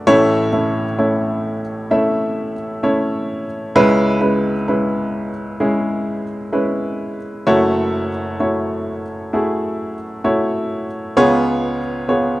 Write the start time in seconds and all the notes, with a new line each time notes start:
0.07 A1 A2 A3 C#4 E4 C#5
0.53 A3 C#4 E4 A4
0.98 A3 C#4 E4 C#5
1.91 A3 C#4 E4 E5
2.83 A3 C#4 E4 C#5
3.75 C#2 C#3 G#3 C#4 E4 B4
4.21 G#3 C#4 E4 B4
4.68 G#3 C#4 E4 B4
5.60 G#3 C#4 E4 G#4
6.52 G#3 C#4 E4 B4
7.47 F#1 F#2 A3 E4 F#4 C#5
8.40 A3 E4 F#4 C#5
9.33 A3 E4 F#4 G#4
10.24 A3 E4 F#4 C#5
11.17 C#2 C#3 B3 F4 G#4 C#5
12.08 B3 F4 G#4 C#5